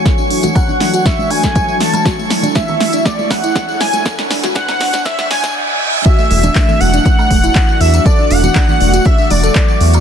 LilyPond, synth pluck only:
\new Staff \with { instrumentName = "Synth pluck" } { \time 4/4 \key d \lydian \tempo 4 = 120 a'16 d'16 d'16 fis'16 d'16 d'16 d'16 fis'16 d'16 d'16 d'16 a'4 r16 | fis'16 a16 a16 d'16 a16 a16 a16 d'16 a16 a16 a16 e'4 r16 | a'16 d'16 d'16 fis'16 d'16 d'16 d'16 d'16 d'16 d'16 d'16 d'16 r4 | fis'16 a16 a16 d'16 a16 a16 a16 d'16 a16 a16 a16 e'4 r16 |
a'16 d'16 d'16 fis'16 d'16 d'16 d'16 fis'16 d'16 d'16 d'16 a'4 r16 | }